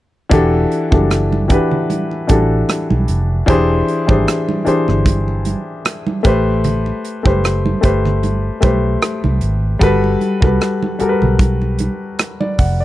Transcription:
0.29 0.64 E1 loud
0.29 0.87 E3 medium
0.29 0.88 D4 medium
0.29 0.88 F#4 medium
0.29 0.89 G4 medium
0.29 0.89 A4 loud
0.29 kick loud
0.29 closed hi-hat medium
0.29 low conga medium
0.72 closed hi-hat medium
0.91 1.58 F#1 medium
0.91 1.46 E3 medium
0.91 1.46 D4 medium
0.91 1.47 F#4 medium
0.91 1.47 G4 medium
0.91 1.48 A4 medium
0.91 kick medium
0.91 high conga medium
1.10 cross-stick medium
1.10 closed hi-hat medium
1.10 muted conga soft
1.32 high conga medium
1.48 2.24 E3 medium
1.48 2.24 D4 medium
1.48 2.25 F#4 medium
1.48 2.25 G4 medium
1.48 2.26 B4 medium
1.48 kick medium
1.48 closed hi-hat medium
1.71 low conga medium
1.90 closed hi-hat medium
1.90 muted conga soft
1.90 high conga medium
2.11 muted conga soft
2.27 2.62 A1 medium
2.27 3.41 E3 medium
2.27 3.41 D4 medium
2.27 3.42 F#4 medium
2.27 3.42 G4 medium
2.27 3.42 A4 medium
2.27 kick medium
2.27 closed hi-hat medium
2.27 high conga medium
2.69 cross-stick medium
2.69 closed hi-hat medium
2.69 muted conga soft
2.90 3.06 B1 medium
2.90 muted conga soft
2.90 high conga medium
3.08 3.41 F1 medium
3.08 closed hi-hat medium
3.46 3.81 E1 medium
3.46 4.04 E3 medium
3.46 4.05 D4 medium
3.46 4.05 G4 medium
3.46 4.06 G#4 medium
3.46 4.06 C5 loud
3.46 kick loud
3.46 closed hi-hat medium
3.46 muted conga soft
3.46 low conga medium
3.88 closed hi-hat medium
4.07 4.24 G#1 medium
4.07 4.62 E3 medium
4.07 4.63 D4 medium
4.07 4.63 G4 medium
4.07 4.64 G#4 medium
4.07 4.64 C5 medium
4.07 kick medium
4.07 high conga medium
4.28 cross-stick medium
4.28 closed hi-hat medium
4.49 muted conga soft
4.49 high conga medium
4.65 6.16 E3 medium
4.65 6.16 D4 medium
4.65 6.16 G4 medium
4.65 6.17 G#4 medium
4.65 6.17 C5 medium
4.65 muted fingered electric bass stroke soft
4.65 closed hi-hat medium
4.88 5.54 G1 medium
4.88 cross-stick soft
4.88 low conga medium
5.06 kick medium
5.06 closed hi-hat medium
5.06 muted conga soft
5.06 high conga medium
5.28 muted conga soft
5.45 closed hi-hat medium
5.45 high conga medium
5.85 cross-stick loud
5.85 closed hi-hat medium
5.85 muted conga soft
6.07 muted conga soft
6.07 high conga medium
6.23 6.91 A1 medium
6.23 7.18 A3 medium
6.23 7.19 G4 medium
6.23 7.20 B4 medium
6.23 7.20 C5 medium
6.23 kick medium
6.23 closed hi-hat medium
6.64 closed hi-hat medium
6.64 low conga medium
6.86 muted conga soft
7.05 closed hi-hat medium
7.23 7.74 F#1 medium
7.23 7.79 A3 medium
7.23 7.80 G4 medium
7.23 7.80 B4 medium
7.23 7.81 C5 medium
7.23 kick medium
7.23 high conga medium
7.44 cross-stick medium
7.44 closed hi-hat medium
7.44 muted conga soft
7.66 muted conga soft
7.66 high conga medium
7.81 8.49 G1 medium
7.81 8.57 A3 medium
7.81 8.58 G4 medium
7.81 8.59 B4 medium
7.81 8.59 C5 medium
7.81 kick medium
7.81 closed hi-hat medium
8.05 cross-stick soft
8.05 low conga medium
8.23 closed hi-hat medium
8.23 high conga medium
8.61 8.96 B1 medium
8.61 9.74 A3 medium
8.61 9.75 G4 medium
8.61 9.75 B4 medium
8.61 9.76 C5 medium
8.61 kick medium
8.61 closed hi-hat medium
8.61 high conga medium
9.02 cross-stick medium
9.02 closed hi-hat medium
9.02 muted conga soft
9.24 9.39 C2 medium
9.24 muted conga soft
9.24 high conga medium
9.41 9.75 G#1 medium
9.41 closed hi-hat medium
9.79 10.14 G1 medium
9.79 10.38 G3 medium
9.79 10.38 F#4 medium
9.79 10.39 A4 medium
9.79 10.40 B4 loud
9.79 kick medium
9.79 closed hi-hat medium
9.79 low conga medium
10.04 muted conga soft
10.21 closed hi-hat medium
10.21 high conga soft
10.41 10.58 C2 medium
10.41 10.96 G3 medium
10.41 10.97 F#4 medium
10.41 10.98 A4 medium
10.41 10.98 B4 medium
10.41 kick medium
10.41 high conga medium
10.61 cross-stick medium
10.61 closed hi-hat medium
10.83 muted conga soft
10.83 high conga medium
10.99 12.50 G3 medium
10.99 12.50 F#4 medium
10.99 12.51 A4 medium
10.99 11.09 A#4 medium
10.99 muted fingered electric bass stroke soft
10.99 closed hi-hat medium
11.09 12.55 B4 medium
11.22 11.88 B1 medium
11.22 low conga medium
11.39 kick medium
11.39 closed hi-hat medium
11.39 high conga medium
11.62 muted conga soft
11.79 closed hi-hat medium
11.79 high conga medium
12.19 cross-stick loud
12.19 closed hi-hat medium
12.19 muted conga soft
12.40 12.58 D5 medium
12.40 high conga medium
12.59 12.85 F1 medium
12.59 12.79 F#5 medium
12.59 kick medium
12.59 open hi-hat medium
12.80 12.85 D5 medium

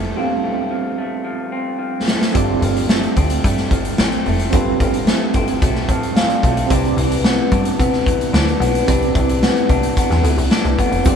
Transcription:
0.00 0.12 F1 medium
0.00 0.15 G2 medium
0.00 0.70 F3 medium
0.00 0.43 A3 medium
0.00 0.12 C4 medium
0.00 0.16 C4 medium
0.00 0.13 G4 medium
0.00 0.14 A4 medium
0.00 0.14 B4 medium
0.14 2.33 G2 medium
0.14 0.22 B3 medium
0.14 1.52 C4 medium
0.14 2.31 G4 medium
0.14 2.31 A4 medium
0.19 2.31 C4 medium
0.19 2.32 F5 medium
0.44 0.98 A3 medium
0.71 1.24 F3 medium
0.98 2.07 A3 medium
1.24 1.78 F3 medium
1.52 2.34 C4 medium
1.79 2.61 F3 medium
2.07 2.88 A3 medium
2.07 snare loud
2.22 snare medium
2.32 2.57 G1 loud
2.32 4.52 G2 medium
2.32 4.47 C4 medium
2.32 3.16 C4 medium
2.32 4.48 F4 medium
2.32 4.49 G4 medium
2.32 4.49 A4 medium
2.32 kick loud
2.32 closed hi-hat medium
2.37 4.50 D5 medium
2.61 3.06 G1 loud
2.61 3.70 F3 medium
2.61 closed hi-hat medium
2.77 closed hi-hat medium
2.89 3.43 A3 medium
2.89 snare loud
3.03 closed hi-hat soft
3.16 3.39 D2 medium
3.16 3.98 C4 medium
3.16 kick medium
3.16 closed hi-hat medium
3.30 closed hi-hat medium
3.44 3.66 G2 loud
3.44 4.25 A3 medium
3.44 kick loud
3.44 closed hi-hat medium
3.58 snare soft
3.58 closed hi-hat soft
3.71 3.93 G1 medium
3.71 4.79 F3 medium
3.71 kick medium
3.71 closed hi-hat medium
3.85 closed hi-hat medium
3.98 4.20 A1 medium
3.98 4.53 C4 medium
3.98 snare loud
4.12 closed hi-hat soft
4.26 4.48 F1 loud
4.26 5.07 A3 medium
4.26 open hi-hat soft
4.39 closed hi-hat medium
4.50 4.75 G1 loud
4.50 6.71 G2 medium
4.50 6.65 C4 medium
4.50 5.35 C4 medium
4.50 6.66 F4 medium
4.50 6.67 G4 medium
4.50 6.67 A4 medium
4.50 kick loud
4.50 closed hi-hat loud
4.55 6.68 B4 medium
4.80 5.13 G1 loud
4.80 5.89 F3 medium
4.80 kick medium
4.80 closed hi-hat medium
4.94 closed hi-hat medium
5.07 5.61 A3 medium
5.07 snare loud
5.34 5.56 G1 medium
5.34 6.16 C4 medium
5.34 kick medium
5.34 closed hi-hat medium
5.48 closed hi-hat medium
5.62 5.84 B1 medium
5.62 6.44 A3 medium
5.62 kick loud
5.62 closed hi-hat medium
5.75 snare soft
5.88 6.32 A1 medium
5.88 6.76 F3 medium
5.88 6.14 A5 medium
5.88 kick loud
5.88 closed hi-hat medium
6.03 closed hi-hat medium
6.16 6.71 C4 medium
6.16 6.29 F5 medium
6.16 snare loud
6.29 6.67 D5 medium
6.29 closed hi-hat soft
6.43 6.65 B1 medium
6.43 6.77 A3 medium
6.43 kick medium
6.43 closed hi-hat medium
6.57 closed hi-hat medium
6.67 6.92 C2 loud
6.67 8.86 C3 medium
6.67 8.82 C4 medium
6.67 8.83 E4 medium
6.67 8.84 G4 medium
6.67 kick loud
6.67 closed hi-hat medium
6.71 7.52 D4 medium
6.71 8.84 B4 medium
6.71 8.85 D5 medium
6.85 closed hi-hat soft
6.97 7.41 C2 loud
6.97 8.05 E3 medium
6.97 closed hi-hat medium
7.12 closed hi-hat medium
7.25 7.78 B3 medium
7.25 snare loud
7.52 7.74 G2 loud
7.52 8.32 D4 medium
7.52 kick loud
7.52 closed hi-hat medium
7.65 closed hi-hat medium
7.79 8.08 C3 loud
7.79 8.59 B3 medium
7.79 kick loud
7.79 closed hi-hat medium
7.93 snare soft
7.93 closed hi-hat soft
8.06 8.28 C2 medium
8.06 9.14 E3 medium
8.06 kick loud
8.06 closed hi-hat medium
8.21 closed hi-hat medium
8.33 8.55 D2 loud
8.33 8.88 D4 medium
8.33 snare loud
8.48 closed hi-hat soft
8.60 8.82 B1 loud
8.60 9.42 B3 medium
8.60 closed hi-hat medium
8.75 closed hi-hat medium
8.85 9.10 C2 loud
8.85 11.05 C3 medium
8.85 11.00 C4 medium
8.85 9.69 D4 medium
8.85 11.01 E4 medium
8.85 11.01 G4 medium
8.85 11.02 B4 medium
8.85 kick loud
8.85 closed hi-hat medium
8.90 11.03 D5 medium
9.02 closed hi-hat soft
9.15 9.48 C2 loud
9.15 10.23 E3 medium
9.15 kick loud
9.15 closed hi-hat medium
9.29 closed hi-hat medium
9.43 9.97 B3 medium
9.43 snare loud
9.56 closed hi-hat soft
9.69 9.91 C2 medium
9.69 10.51 D4 medium
9.69 kick medium
9.69 closed hi-hat medium
9.83 closed hi-hat medium
9.97 10.78 B3 medium
9.97 kick loud
9.97 closed hi-hat medium
10.10 10.21 E2 loud
10.10 snare soft
10.10 closed hi-hat soft
10.24 10.35 D2 medium
10.24 11.11 E3 medium
10.24 closed hi-hat medium
10.37 10.48 C2 medium
10.37 closed hi-hat medium
10.51 11.06 D4 medium
10.51 snare loud
10.65 10.76 C2 medium
10.65 closed hi-hat soft
10.79 10.89 G1 loud
10.79 11.11 B3 medium
10.79 kick medium
10.79 closed hi-hat medium
10.91 11.02 F1 medium
10.91 closed hi-hat medium
11.03 11.16 G1 loud
11.03 11.16 G2 medium
11.03 11.16 C4 medium
11.03 11.16 F4 medium
11.03 11.16 G4 medium
11.03 11.16 A4 medium
11.03 kick loud
11.03 closed hi-hat medium
11.03 shaker medium
11.07 11.16 C4 medium
11.07 11.16 D5 medium

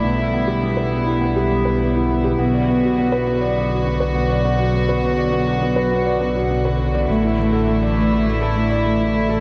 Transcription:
0.00 2.36 B1 medium
0.00 2.35 D3 medium
0.00 2.36 G3 medium
0.00 2.36 B3 medium
0.00 0.17 B3 medium
0.00 2.35 E4 medium
0.18 0.32 E4 medium
0.33 0.47 B3 medium
0.47 0.56 G4 medium
0.62 0.76 B3 medium
0.77 0.91 B4 medium
0.91 1.06 B3 medium
1.06 1.20 E4 medium
1.21 1.35 B3 medium
1.36 1.44 G4 medium
1.51 1.65 B3 medium
1.65 1.79 B4 medium
1.80 1.94 B3 medium
1.95 2.09 E4 medium
2.09 2.23 B3 medium
2.24 2.32 G4 medium
2.38 7.06 B1 medium
2.38 9.40 D3 medium
2.38 7.05 F#3 medium
2.38 4.71 B3 medium
2.38 2.53 B3 medium
2.38 7.05 F#4 medium
2.54 2.67 D5 medium
2.68 2.82 B3 medium
2.83 2.97 F#4 medium
2.98 3.12 B3 medium
3.12 3.21 B4 medium
3.27 3.41 B3 medium
3.41 3.56 D5 medium
3.56 3.70 B3 medium
3.71 3.85 F#4 medium
3.86 4.00 B3 medium
4.00 4.09 B4 medium
4.15 4.29 B3 medium
4.30 4.44 D5 medium
4.45 4.59 B3 medium
4.59 4.73 F#4 medium
4.74 4.88 B3 medium
4.89 4.97 B4 medium
5.04 5.18 B3 medium
5.18 5.32 D5 medium
5.32 5.47 B3 medium
5.47 5.61 F#4 medium
5.61 5.76 B3 medium
5.76 5.85 B4 medium
5.91 6.05 B3 medium
6.06 6.20 D5 medium
6.20 6.35 B3 medium
6.36 6.50 F#4 medium
6.50 6.64 B3 medium
6.65 6.73 B4 medium
6.80 6.94 B3 medium
6.95 7.09 D5 medium
7.09 9.40 A1 medium
7.09 9.40 E3 medium
7.09 9.40 A3 medium
7.09 7.23 A3 medium
7.09 9.40 E4 medium
7.24 7.38 E4 medium
7.39 7.53 A3 medium
7.53 7.61 A4 medium
7.68 7.82 A3 medium
7.83 7.97 D5 medium
7.97 8.11 A3 medium
8.12 8.26 E4 medium
8.27 8.41 A3 medium
8.41 8.50 A4 medium
8.56 8.70 A3 medium
8.71 8.85 D5 medium
8.85 8.99 A3 medium
9.00 9.14 E4 medium
9.14 9.29 A3 medium
9.29 9.38 A4 medium

